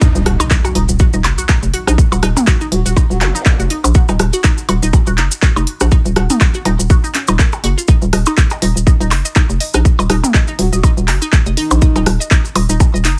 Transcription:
0.01 synth arpeggio sound D#4, kick, impact, maracas
0.15 fm bass D#1, maracas
0.26 fm bass D#1, synth arpeggio sound F#4, cross-stick, open hi-hat
0.40 synth arpeggio sound D#4, percussion blips, maracas
0.51 kick, clap, maracas
0.65 synth arpeggio sound F#4, percussion blips, maracas
0.75 fm bass D#1, synth arpeggio sound D#4, open hi-hat
0.89 fm bass D#1, maracas
0.99 synth arpeggio sound F#4, kick, maracas
1.13 fm bass D#1, synth arpeggio sound D#4, maracas
1.24 fm bass F#1, clap, open hi-hat, percussion blips
1.38 synth arpeggio sound F#4, maracas
1.49 synth arpeggio sound D#4, kick, clap, percussion blips, maracas
1.63 fm bass F1, maracas
1.74 synth arpeggio sound F#4, open hi-hat
1.87 fm bass A#1, synth arpeggio sound D#4, cross-stick, maracas
1.98 kick, maracas
2.12 fm bass D#1, synth arpeggio sound F#4, percussion blips, maracas
2.23 fm bass D#1, synth arpeggio sound D#4, cross-stick, open hi-hat
2.37 mid tom, percussion blips, maracas
2.47 synth arpeggio sound F#4, kick, clap, maracas
2.61 synth arpeggio sound D#4, maracas
2.72 fm bass D#1, soft synth lead F#4, open hi-hat
2.86 fm bass D#1, synth arpeggio sound F#4, soft synth lead F#4, maracas
2.96 synth arpeggio sound D#4, kick, percussion blips, maracas
3.10 fm bass D#1, soft synth lead F#4, maracas
3.21 fm bass F#1, soft synth lead F#4, synth arpeggio sound F#4, clap, open hi-hat, zap, percussion blips
3.35 synth arpeggio sound D#4, maracas
3.46 kick, clap, maracas
3.59 fm bass F1, synth arpeggio sound F#4, maracas
3.70 synth arpeggio sound D#4, open hi-hat
3.84 fm bass A#1, percussion blips, maracas
3.94 synth arpeggio sound F#4, kick, maracas
4.08 fm bass D#1, synth arpeggio sound D#4, percussion blips, maracas
4.19 fm bass D#1, cross-stick, open hi-hat
4.33 synth arpeggio sound F#4, maracas
4.44 synth arpeggio sound D#4, kick, clap, maracas
4.58 maracas
4.69 fm bass D#1, synth arpeggio sound F#4, open hi-hat, percussion blips
4.83 fm bass D#1, synth arpeggio sound D#4, maracas
4.93 kick, percussion blips, maracas
5.07 fm bass D#1, synth arpeggio sound F#4, maracas
5.18 fm bass F#1, synth arpeggio sound D#4, clap, open hi-hat
5.31 maracas
5.42 synth arpeggio sound F#4, kick, clap, maracas
5.56 fm bass F1, synth arpeggio sound D#4, percussion blips, maracas
5.67 open hi-hat
5.80 fm bass A#1, synth arpeggio sound F#4, cross-stick, percussion blips, maracas
5.91 synth arpeggio sound D#4, kick, maracas
6.05 fm bass D#1, maracas
6.16 fm bass D#1, synth arpeggio sound F#4, cross-stick, open hi-hat
6.30 synth arpeggio sound D#4, mid tom, maracas
6.41 kick, clap, percussion blips, maracas
6.54 synth arpeggio sound F#4, maracas
6.65 fm bass D#1, synth arpeggio sound D#4, open hi-hat, percussion blips
6.79 fm bass D#1, maracas
6.90 synth arpeggio sound F#4, kick, maracas
7.04 synth arpeggio sound D#4, maracas
7.15 synth arpeggio sound C#4, clap, open hi-hat
7.28 fm bass D#1, synth arpeggio sound D#4, percussion blips, maracas
7.39 synth arpeggio sound A#4, kick, clap, maracas
7.52 percussion blips, maracas
7.64 fm bass F#1, synth arpeggio sound F#4, open hi-hat
7.78 synth arpeggio sound F4, maracas
7.88 synth arpeggio sound D#4, kick, maracas
8.02 fm bass D#1, maracas
8.13 fm bass D#1, synth arpeggio sound D#5, cross-stick, open hi-hat
8.26 synth arpeggio sound D#4, percussion blips, maracas
8.37 kick, clap, maracas
8.50 synth arpeggio sound D#5, percussion blips, maracas
8.62 fm bass D#1, synth arpeggio sound D#4, open hi-hat
8.76 fm bass D#1, maracas
8.87 synth arpeggio sound D#5, kick, maracas
9.00 fm bass D#1, synth arpeggio sound D#4, maracas
9.11 fm bass F#1, clap, open hi-hat, percussion blips
9.25 synth arpeggio sound D#5, maracas
9.35 synth arpeggio sound D#4, kick, clap, percussion blips, maracas
9.50 fm bass F1, maracas
9.60 synth arpeggio sound D#5, open hi-hat
9.74 fm bass A#1, synth arpeggio sound D#4, cross-stick, maracas
9.85 kick, maracas
9.99 fm bass D#1, synth arpeggio sound D#5, percussion blips, maracas
10.10 fm bass D#1, synth arpeggio sound D#4, cross-stick, open hi-hat
10.24 mid tom, percussion blips, maracas
10.34 synth arpeggio sound D#5, kick, clap, maracas
10.47 synth arpeggio sound D#4, maracas
10.59 fm bass D#1, soft synth lead F#4, open hi-hat
10.73 fm bass D#1, soft synth lead F#4, synth arpeggio sound D#5, maracas
10.83 synth arpeggio sound D#4, kick, percussion blips, maracas
10.97 fm bass D#1, maracas
11.08 fm bass F#1, synth arpeggio sound D#5, clap, open hi-hat, percussion blips
11.22 synth arpeggio sound D#4, maracas
11.33 kick, clap, maracas
11.46 fm bass F1, synth arpeggio sound D#5, maracas
11.57 synth arpeggio sound D#4, soft synth lead D#4, open hi-hat
11.71 fm bass A#1, percussion blips, maracas
11.82 synth arpeggio sound D#5, kick, maracas
11.96 fm bass D#1, synth arpeggio sound D#4, percussion blips, maracas
12.06 fm bass D#1, cross-stick, open hi-hat
12.20 synth arpeggio sound D#5, maracas
12.31 synth arpeggio sound D#4, kick, clap, maracas
12.45 maracas
12.55 fm bass D#1, synth arpeggio sound D#5, open hi-hat, percussion blips
12.69 fm bass D#1, synth arpeggio sound D#4, maracas
12.80 kick, percussion blips, maracas
12.94 fm bass D#1, synth arpeggio sound D#5, maracas
13.05 fm bass F#1, synth arpeggio sound D#4, clap, open hi-hat

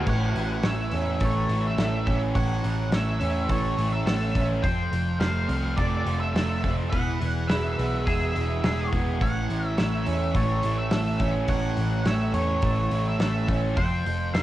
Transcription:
0.07 picked electric bass A1, overdriven electric guitar A2, clean electric guitar C#5, lead electric guitar F#5, kick, crash
0.35 picked electric bass A1, overdriven electric guitar E3, open hi-hat
0.63 picked electric bass A1, overdriven electric guitar A3, clean electric guitar C#5, lead electric guitar E5, snare, open hi-hat
0.91 picked electric bass E2, overdriven electric guitar C#4, open hi-hat
1.20 picked electric bass A1, distorted electric guitar E3, overdriven electric guitar A3, clean electric guitar A4, lead electric guitar C#5, kick, open hi-hat
1.49 picked electric bass A1, distorted electric guitar A3, overdriven electric guitar E4, open hi-hat
1.67 lead electric guitar E5
1.77 picked electric bass A1, overdriven electric guitar A3, distorted electric guitar E4, clean electric guitar A4, lead electric guitar E5, snare, open hi-hat
2.06 picked electric bass A1, overdriven electric guitar C#4, kick, open hi-hat
2.35 picked electric bass A1, overdriven electric guitar A2, clean electric guitar C#5, lead electric guitar F#5, kick, open hi-hat
2.64 picked electric bass A1, overdriven electric guitar E3, open hi-hat
2.92 picked electric bass A1, overdriven electric guitar A3, clean electric guitar C#5, lead electric guitar E5, snare, open hi-hat
3.20 picked electric bass E2, overdriven electric guitar C#4, open hi-hat
3.49 picked electric bass A1, distorted electric guitar E3, overdriven electric guitar A3, clean electric guitar A4, lead electric guitar C#5, kick, open hi-hat
3.77 picked electric bass A1, distorted electric guitar A3, overdriven electric guitar E4, open hi-hat
3.93 lead electric guitar E5
4.06 picked electric bass A1, overdriven electric guitar A3, distorted electric guitar E4, clean electric guitar A4, lead electric guitar E5, snare, open hi-hat
4.35 picked electric bass A1, overdriven electric guitar C#4, kick, open hi-hat
4.63 picked electric bass F1, distorted electric guitar F2, overdriven electric guitar F3, clean electric guitar C5, lead electric guitar G5, kick, open hi-hat
4.92 picked electric bass F1, overdriven electric guitar F3, open hi-hat
5.20 picked electric bass F1, overdriven electric guitar A3, clean electric guitar C5, lead electric guitar F5, snare, open hi-hat
5.48 picked electric bass C2, overdriven electric guitar C4, open hi-hat
5.76 picked electric bass F1, distorted electric guitar F3, overdriven electric guitar A3, clean electric guitar A4, lead electric guitar D5, kick, open hi-hat
6.06 picked electric bass F1, distorted electric guitar A3, overdriven electric guitar F4, open hi-hat
6.20 lead electric guitar E5
6.33 picked electric bass F1, overdriven electric guitar A3, distorted electric guitar F4, clean electric guitar A4, lead electric guitar E5, snare, open hi-hat
6.64 picked electric bass F1, overdriven electric guitar C4, kick, open hi-hat
6.90 picked electric bass E1, distorted electric guitar E2, overdriven electric guitar E3, clean electric guitar B4, lead electric guitar F#5, kick, open hi-hat
7.21 picked electric bass E1, overdriven electric guitar E3, open hi-hat
7.48 picked electric bass E1, overdriven electric guitar G#3, clean electric guitar B4, lead electric guitar E5, snare, open hi-hat
7.78 picked electric bass B1, overdriven electric guitar B3, open hi-hat
8.06 picked electric bass E1, distorted electric guitar E3, overdriven electric guitar G#3, clean electric guitar G#4, lead electric guitar E5, kick, open hi-hat
8.36 picked electric bass E1, distorted electric guitar G#3, overdriven electric guitar E4, open hi-hat
8.64 picked electric bass E1, overdriven electric guitar G#3, distorted electric guitar E4, clean electric guitar G#4, snare, open hi-hat
8.92 picked electric bass E1, overdriven electric guitar B3, kick, open hi-hat
9.21 picked electric bass A1, overdriven electric guitar A2, clean electric guitar C#5, lead electric guitar F#5, kick, open hi-hat
9.49 picked electric bass A1, overdriven electric guitar E3, open hi-hat
9.67 lead electric guitar E5
9.77 picked electric bass A1, overdriven electric guitar A3, clean electric guitar C#5, lead electric guitar E5, snare, open hi-hat
10.06 picked electric bass E2, overdriven electric guitar C#4, open hi-hat
10.35 picked electric bass A1, distorted electric guitar E3, overdriven electric guitar A3, clean electric guitar A4, lead electric guitar C#5, kick, open hi-hat
10.63 picked electric bass A1, distorted electric guitar A3, overdriven electric guitar E4, open hi-hat
10.78 lead electric guitar E5
10.91 picked electric bass A1, overdriven electric guitar A3, distorted electric guitar E4, clean electric guitar A4, lead electric guitar E5, snare, open hi-hat
11.20 picked electric bass A1, overdriven electric guitar C#4, kick, open hi-hat
11.48 picked electric bass A1, overdriven electric guitar A2, clean electric guitar C#5, lead electric guitar F#5, kick, open hi-hat
11.77 picked electric bass A1, overdriven electric guitar E3, open hi-hat
12.05 picked electric bass A1, overdriven electric guitar A3, clean electric guitar C#5, lead electric guitar E5, snare, open hi-hat
12.34 picked electric bass E2, overdriven electric guitar C#4, lead electric guitar C#5, open hi-hat
12.62 picked electric bass A1, distorted electric guitar E3, overdriven electric guitar A3, clean electric guitar A4, kick, open hi-hat
12.91 picked electric bass A1, distorted electric guitar A3, overdriven electric guitar E4, open hi-hat
13.08 lead electric guitar E5
13.19 picked electric bass A1, overdriven electric guitar A3, distorted electric guitar E4, clean electric guitar A4, lead electric guitar E5, snare, open hi-hat
13.48 picked electric bass A1, overdriven electric guitar C#4, kick, open hi-hat
13.76 picked electric bass F1, distorted electric guitar F2, overdriven electric guitar F3, clean electric guitar C5, lead electric guitar G5, kick, open hi-hat
14.05 picked electric bass F1, overdriven electric guitar F3, open hi-hat
14.34 picked electric bass F1, overdriven electric guitar A3, clean electric guitar C5, lead electric guitar F5, snare, open hi-hat

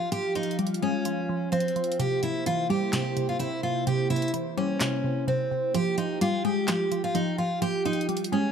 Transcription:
Already playing: synth pluck F3 G#3, analog synth pad F3 G4 F5
0.12 synth pluck F3, analog synth pad F4, steel-string acoustic guitar G4, closed hi-hat
0.35 synth pluck F3, steel-string acoustic guitar D#4, closed hi-hat
0.43 closed hi-hat
0.51 closed hi-hat
0.59 synth pluck G3, closed hi-hat
0.67 closed hi-hat
0.74 closed hi-hat
0.82 synth pluck G#3, steel-string acoustic guitar C#4
1.05 synth pluck F3, closed hi-hat
1.29 synth pluck F3
1.52 synth pluck F3, steel-string acoustic guitar C4, closed hi-hat
1.60 closed hi-hat
1.68 closed hi-hat
1.76 synth pluck F3, closed hi-hat
1.84 closed hi-hat
1.92 closed hi-hat
2.00 synth pluck C3, analog synth pad A#3 E4 C5, steel-string acoustic guitar G4, closed hi-hat
2.23 synth pluck C3, steel-string acoustic guitar E4, closed hi-hat
2.46 synth pluck E3, steel-string acoustic guitar F4, closed hi-hat
2.70 synth pluck G3, steel-string acoustic guitar G4
2.93 synth pluck C3, steel-string acoustic guitar G4, snare, clap, closed hi-hat
3.17 synth pluck C3, closed hi-hat
3.29 steel-string acoustic guitar F4
3.39 synth pluck C3, steel-string acoustic guitar E4, closed hi-hat
3.63 synth pluck C3, steel-string acoustic guitar F4
3.87 synth pluck C3, steel-string acoustic guitar G4, closed hi-hat
4.10 synth pluck C3, steel-string acoustic guitar E4, closed hi-hat
4.16 closed hi-hat
4.22 closed hi-hat
4.28 closed hi-hat
4.34 synth pluck E3, closed hi-hat
4.57 synth pluck G3, steel-string acoustic guitar C#4
4.80 synth pluck C3, snare, clap, closed hi-hat
5.04 synth pluck C3
5.28 synth pluck C3, steel-string acoustic guitar C4
5.51 synth pluck C3
5.74 synth pluck F3, analog synth pad F4 G4 G5, steel-string acoustic guitar G4, closed hi-hat
5.98 synth pluck F3, steel-string acoustic guitar D#4, closed hi-hat
6.21 synth pluck G3, steel-string acoustic guitar F4, closed hi-hat
6.45 synth pluck G#3, steel-string acoustic guitar G4
6.68 synth pluck F3, steel-string acoustic guitar G4, snare, clap, closed hi-hat
6.92 synth pluck F3, closed hi-hat
7.04 steel-string acoustic guitar F4
7.15 synth pluck F3, steel-string acoustic guitar D#4, closed hi-hat
7.38 synth pluck F3, steel-string acoustic guitar F4
7.62 synth pluck F3, steel-string acoustic guitar G4, closed hi-hat
7.85 synth pluck F3, steel-string acoustic guitar D#4, closed hi-hat
7.93 closed hi-hat
8.01 closed hi-hat
8.09 synth pluck G3, closed hi-hat
8.17 closed hi-hat
8.24 closed hi-hat
8.32 synth pluck G#3, steel-string acoustic guitar C#4

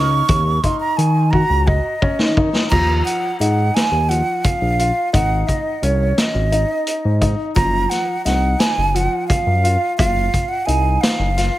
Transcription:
Already playing: analog synth bass C#2, grand piano D#4, flute C#6
0.28 analog synth bass D#2, kick, closed hi-hat
0.63 grand piano D#4, flute C6, kick, closed hi-hat
0.80 flute A#5
0.97 analog synth bass D#3, flute G#5, closed hi-hat
1.31 grand piano F#4, flute A#5, kick
1.50 analog synth bass C#2
1.67 flute D#5, kick
2.02 grand piano C#4, kick
2.19 analog synth bass D#3, snare
2.37 grand piano D#4, kick
2.55 snare
2.70 analog synth bass D#2, grand piano F3, flute A#5, kick, crash
3.05 flute F#5, closed hi-hat
3.40 analog synth bass G#2, grand piano D#4, flute F#5, closed hi-hat
3.74 flute G#5, snare, closed hi-hat
3.92 analog synth bass D#2
4.09 grand piano F3, flute F#5, closed hi-hat
4.44 flute F5, kick, closed hi-hat
4.61 analog synth bass A#1
4.79 grand piano F4, closed hi-hat
5.13 analog synth bass G#1, grand piano D#4, flute F#5, kick, closed hi-hat
5.47 flute D#5, kick, closed hi-hat
5.82 analog synth bass C2, grand piano C#4, flute C#5, closed hi-hat
6.18 flute D#5, snare, closed hi-hat
6.34 analog synth bass G#1
6.52 grand piano D#4, closed hi-hat
6.87 closed hi-hat
7.05 analog synth bass G#2
7.21 grand piano D#4, kick, closed hi-hat
7.56 analog synth bass F#1, grand piano F3, flute A#5, kick, closed hi-hat
7.90 flute F#5, snare, closed hi-hat
8.25 analog synth bass C2, grand piano D#4, flute F#5, snare, closed hi-hat
8.60 flute G#5, snare, closed hi-hat
8.78 analog synth bass F#1
8.94 grand piano F3, flute F#5, closed hi-hat
9.28 flute F5, kick, closed hi-hat
9.47 analog synth bass F#2
9.64 grand piano F4, closed hi-hat
9.97 analog synth bass F#1, grand piano F4, flute F5, kick, closed hi-hat
10.34 kick, closed hi-hat
10.48 flute F#5
10.66 analog synth bass C2, grand piano D#4, flute G#5, closed hi-hat
11.01 flute F5, snare, closed hi-hat
11.19 analog synth bass F#1
11.37 grand piano F4, snare, closed hi-hat

